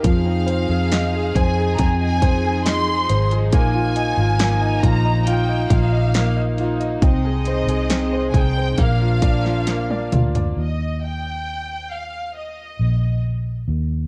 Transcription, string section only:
\new Staff \with { instrumentName = "String section" } { \time 4/4 \key bes \mixolydian \tempo 4 = 68 << { <ees' aes'>1 | bes1 | aes2 <bes d'>2 | r1 | } \\ { f1~ | f1 | c2 f2 | r1 | } >> }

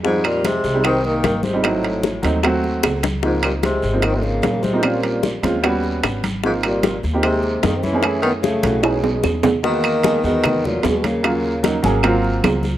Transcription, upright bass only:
\new Staff \with { instrumentName = "Upright bass" } { \clef bass \time 4/4 \key aes \major \tempo 4 = 150 f,4. c,4. aes,,4~ | aes,,4. ees,4. des,4~ | des,4. aes,,4. bes,,4~ | bes,,4. ees,4. aes,,4~ |
aes,,4. ees,4. ges,4~ | ges,4. ces,4. fes,4~ | fes,4. e,4. dis,4~ | dis,4. aes,,4. des,4 | }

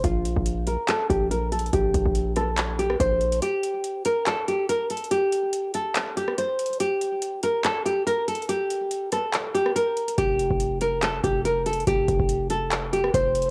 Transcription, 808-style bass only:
\new Staff \with { instrumentName = "808-style bass" } { \clef bass \time 4/4 \key f \mixolydian \tempo 4 = 142 bes,,8. bes,,4 r8. bes,,4. | bes,,8 bes,,16 bes,,2~ bes,,16 bes,,4 | r1 | r1 |
r1 | r1 | f,,8. f,,4.~ f,,16 f,,4. | f,,8 f,,16 f,,2~ f,,16 f,,4 | }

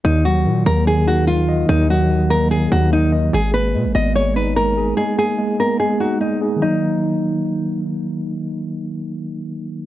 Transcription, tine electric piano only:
\new Staff \with { instrumentName = "Tine electric piano" } { \clef bass \time 4/4 \key ees \minor \tempo 4 = 146 ees8 ges8 ees8 bes8 ees8 ees'8 ees8 ees''8 | ees8 ges8 ees8 bes8 ees8 ees'8 ees8 ees''8 | aes8 bes8 aes8 ces'8 aes8 ees'8 aes8 aes'8 | aes8 bes8 aes8 ces'8 aes8 ees'8 aes8 aes'8 |
<ees ges bes ees'>1~ | <ees ges bes ees'>1 | }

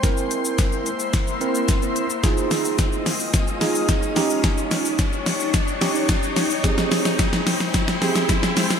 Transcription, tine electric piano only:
\new Staff \with { instrumentName = "Tine electric piano" } { \time 4/4 \key f \minor \tempo 4 = 109 <c' e' bes'>4. r4 <c' e' bes'>4 r8 | <ees' f' aes'>4. r4 <ees' f' aes'>4 <des' ees' g'>8~ | <des' ees' g'>4 r4. <des' ees' g'>4 r8 | <c' g' aes'>4. r4 <c' g' aes'>4 r8 | }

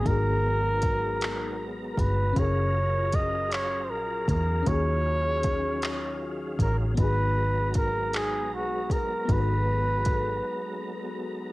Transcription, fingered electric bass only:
\new Staff \with { instrumentName = "Fingered electric bass" } { \clef bass \time 6/8 \key aes \mixolydian \tempo 4. = 52 aes,,2~ aes,,8 g,,8 | ges,,2 bes,,8 fes,8 | ees,2~ ees,8 a,,8 | aes,,2 ces,8 a,,8 |
aes,,4. r4. | }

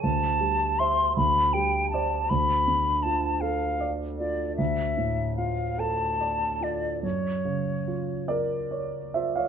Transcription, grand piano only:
\new Staff \with { instrumentName = "Grand piano" } { \time 6/8 \key d \mixolydian \tempo 4. = 51 << { r2. | r2. | r2. | r4. <ais' d''>4 <c'' e''>16 <cis'' eis''>16 | } \\ { d,8 g8 <c'' e''>8 d,8 g8 <c'' d''>8 | d,8 d8 f'8 a'8 d''8 f'8 | d,8 a,8 f'8 a'8 d''8 f'8 | fis,8 cis8 eis'4 cis''8 eis'8 | } >> }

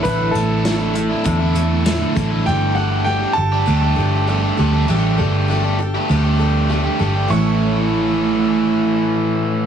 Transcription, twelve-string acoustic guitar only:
\new Staff \with { instrumentName = "Twelve-string acoustic guitar" } { \time 4/4 \key a \mixolydian \tempo 4 = 99 <a, d a d' e' a'>8 <a d' e' a'>8 <a d' e' a'>8 <a d' e' a'>8 <a, d a d' e' a'>8 <a d' e' a'>8 <a d' e' a'>8 <a d' e' a'>8 | <g d' g' a'>8 <d' g' a'>8 <g d' g' a'>8 <d' g' a'>8 <g d' g' a'>8 <d' g' a'>8 <g d' g' a'>8 <d' g' a'>8 | <g d' g' a'>8 <d' g' a'>8 <g d' g' a'>8 <d' g' a'>8 <g d' g' a'>8 <d' g' a'>8 <g d' g' a'>8 <d' g' a'>8 | <a, e a cis' e' a'>1 | }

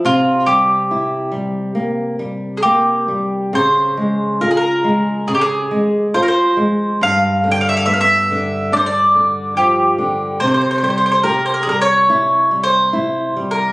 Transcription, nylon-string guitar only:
\new Staff \with { instrumentName = "Nylon-string guitar" } { \clef bass \time 4/4 \key c \phrygian \tempo 4 = 70 c8 g8 e'8 g8 bes8 g8 bes8 g8 | des8 aes8 f'8 aes8 des8 aes8 f'8 aes8 | g,8 d8 b8 d8 d'8 d8 f8 d8 | c8 g8 g'8 g8 e'8 g8 e'8 g8 | }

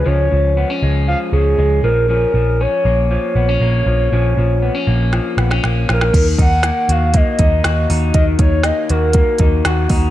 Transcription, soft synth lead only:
\new Staff \with { instrumentName = "Soft synth lead" } { \time 4/4 \key ees \minor \tempo 4 = 119 des''4. r8 f''8 aes'4 bes'8 | bes'4 des''4 des''2~ | des''2. r8 bes'8 | bes'8 ges''4 f''8 ees''2 |
ees''8 des''8 ees''8 bes'4. r4 | }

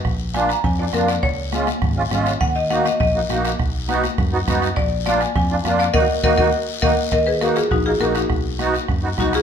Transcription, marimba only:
\new Staff \with { instrumentName = "Marimba" } { \time 4/4 \key ees \minor \tempo 4 = 204 r4 aes''8 bes''8 aes''8 d''8 bes'8 d''8 | des''2. r4 | ges''8 ees''8 ges''8 ees''8 ees''2~ | ees''4 r2. |
d''4 d''8 aes''8 aes''4. d''8 | <bes' ees'' ges''>8 r8 <bes' ees'' ges''>8 <bes' ees'' ges''>8 r4 <bes' ees'' ges''>8 r8 | <bes' ees''>8 <aes' ces''>8 <ges' bes'>8 <f' aes'>8 <ees' ges'>8 <f' aes'>8 <ges' bes'>8 <ees' ges'>8~ | <ees' ges'>4. r4. <dis' fis'>8 <f' aes'>8 | }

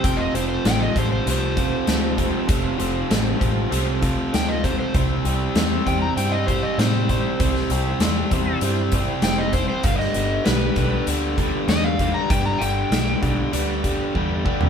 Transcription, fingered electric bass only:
\new Staff \with { instrumentName = "Fingered electric bass" } { \clef bass \time 4/4 \key c \major \tempo 4 = 98 f,,8 f,,8 a,,8 a,,8 c,4 d,4 | f,,8 f,,8 a,,8 a,,8 c,4 d,4 | c,8 c,8 e,8 e,8 g,4 a,4 | c,8 c,8 e,8 e,8 g,4 f,,4 |
g,,8 g,,8 b,,8 b,,8 d,4 e,4 | g,,8 g,,8 b,,8 b,,8 d,4 e,4 | }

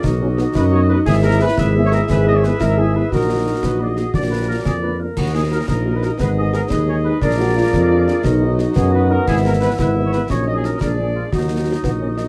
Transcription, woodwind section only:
\new Staff \with { instrumentName = "Woodwind section" } { \time 6/8 \key ees \minor \tempo 4. = 117 << { dis''4. dis''4. | e''4. e''4. | e''2. | ees''2. |
d''4. d''4 r8 | ees''4. ees''4. | ees''4. ees''4. | d''2. |
dis''2. | e''4. e''4. | ees''4. d''4. | ees''2. | } \\ { fis'4. fis'4. | gis'4. gis'4. | gis'2. | ges'2 aes'4 |
bes'4. bes'4 r8 | bes'4. bes'4. | aes'4. aes'4. | aes'2. |
fis'2. | e'4. e'4. | ges'4. aes'4. | ges'2. | } >> }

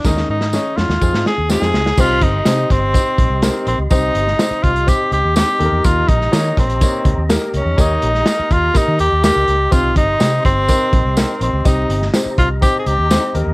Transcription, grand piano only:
<<
  \new Staff \with { instrumentName = "Grand piano" } { \time 4/4 \key c \phrygian \tempo 4 = 124 <des' ees' aes' bes'>8 r8 <des' ees' aes' des''>8 r8 <c' ees' f' aes'>8 r8 <c' ees' f' g'>8 r8 | <c' ees' g' c''>8 r8 <c' ees' g' c''>8 r8 <c' ees' g' c''>8 r8 <c' ees' g' bes'>8 r8 | <c' ees' g' c''>8 r8 <c' ees' g' c''>8 r8 <c' ees' g' c''>8 r8 <c' ees' g' c''>8 <bes ees' g' a' bes'>8~ | <bes ees' g' a' bes'>8 r8 <bes ees' g' des''>8 r8 <bes ees' g' des''>8 r8 <bes ees' g' bes'>8 r8 |
<bes ees' g' des''>8 r8 <bes ees' g' bes'>8 r8 <bes ees' g' bes'>8 r8 <bes ees' g' bes'>8 r8 | <c' ees' g' c''>8 r8 <c' ees' g' c''>8 r8 <c' ees' g' bes'>8 r8 <c' ees' g' bes'>8 r8 | <c' ees' g' ees''>8 r8 <c' ees' g' c''>8 r8 <c' ees' g' c''>8 r8 <c' ees' g' c''>8 <bes ees' g' bes'>8 | }
  \new Staff \with { instrumentName = "Grand piano" } { \clef bass \time 4/4 \key c \phrygian ees4. r2 r8 | c4. r2 r8 | c4. r2 ees8~ | ees4 r2 r8 ees8~ |
ees4 r2. | c4. r2 r8 | c4. r2 ees8 | }
>>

